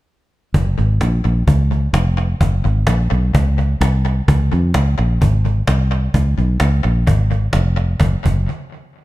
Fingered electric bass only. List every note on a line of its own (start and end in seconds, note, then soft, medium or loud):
0.54 0.75 F#1 loud
0.79 0.98 G#1 medium
1.02 1.22 A#1 medium
1.25 1.44 A#1 medium
1.47 1.87 C#2 medium
1.93 2.33 F1 medium
2.41 2.62 F#1 loud
2.65 2.84 G#1 medium
2.87 3.08 A#1 medium
3.12 3.31 B1 medium
3.34 3.74 C#2 loud
3.81 4.20 C2 loud
4.28 4.49 C#2 loud
4.53 4.71 F2 medium
4.75 4.96 C#2 medium
4.99 5.18 A#1 medium
5.22 5.61 G#1 medium
5.68 6.07 C2 medium
6.14 6.35 C#2 loud
6.38 6.57 B1 medium
6.61 6.82 C#2 medium
6.85 7.04 A#1 medium
7.07 7.47 G#1 medium
7.54 7.94 F1 loud
8.00 8.14 F#1 medium
8.25 8.46 F#1 medium